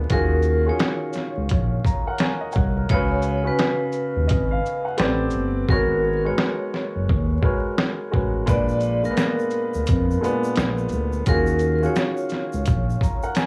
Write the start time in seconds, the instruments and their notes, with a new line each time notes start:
Already playing: upright piano A#2 G#3 B3 D4
0.09 analog synth bass D#2, upright piano D#3 C#4 F4 F#4 G#4, vibraphone A#4, kick, closed hi-hat
0.42 shaker
0.65 upright piano D#3 C#4 F4 F#4 G#4
0.69 vibraphone C#5
0.79 snare, closed hi-hat
1.13 snare, shaker
1.38 analog synth bass C#2
1.49 analog synth bass A#1, kick, closed hi-hat
1.85 upright piano A#5, kick, shaker
2.07 upright piano A#4 F#5
2.18 upright piano C#5 G#5, snare, closed hi-hat
2.40 upright piano D#5
2.52 upright piano C#5 F#5, kick, shaker
2.56 analog synth bass C2
2.76 upright piano A#4
2.89 analog synth bass C#2, upright piano C#3 C#4 F#4, vibraphone C#5, kick, closed hi-hat
2.94 upright piano B4
3.22 shaker
3.43 upright piano C#3 C#4 F#4 B4
3.47 vibraphone B4
3.59 snare, closed hi-hat
3.92 shaker
4.16 analog synth bass D#2
4.27 upright piano D#5, kick, closed hi-hat
4.31 analog synth bass G#1
4.51 upright piano F5
4.66 shaker
4.85 upright piano F#5
4.97 analog synth bass A1, upright piano A3 C4 G4 B4 D5, snare, closed hi-hat
5.30 shaker
5.35 analog synth bass G1
5.69 analog synth bass G#1, upright piano G#3 B3 F#4 A#4 C#5, vibraphone A#4, kick
6.25 upright piano G#3 F#4 A#4 B4 C#5, vibraphone C#5
6.38 snare
6.74 snare
6.96 analog synth bass F#1
7.09 analog synth bass D#2, kick
7.42 upright piano G#3 F#4 A#4 B4 C#5, kick
7.78 snare
8.11 analog synth bass A1, upright piano G#3 F#4 A#4 B4 C#5, kick
8.46 analog synth bass A#1, upright piano A#2 G#3 D4 B4, vibraphone D5, kick, closed hi-hat, shaker
8.69 shaker
8.80 shaker
8.82 shaker
9.01 upright piano A#2 G#3 D4 A#4, vibraphone A#4, shaker
9.11 upright piano B3
9.17 snare, closed hi-hat, shaker
9.39 shaker
9.50 shaker
9.74 analog synth bass D2, shaker
9.86 analog synth bass F2, kick, closed hi-hat, shaker
10.11 shaker
10.21 upright piano A#2 G#3 B3 D4, shaker
10.44 shaker
10.56 analog synth bass A#1, snare, closed hi-hat, shaker
10.78 shaker
10.89 shaker
10.92 analog synth bass D2, shaker
11.13 shaker
11.26 analog synth bass D#2, upright piano D#3 C#4 F4 F#4 G#4, vibraphone A#4, kick, closed hi-hat, shaker
11.47 shaker
11.59 shaker
11.60 shaker
11.81 upright piano D#3 C#4 F4 F#4 G#4, shaker
11.86 vibraphone C#5
11.95 snare, closed hi-hat, shaker
12.17 shaker
12.29 snare, shaker
12.53 analog synth bass C#2, shaker
12.66 analog synth bass A#1, kick, closed hi-hat, shaker
12.90 shaker
13.01 upright piano A#5, kick, shaker
13.23 upright piano A#4 F#5, shaker
13.35 upright piano C#5 G#5, snare, closed hi-hat, shaker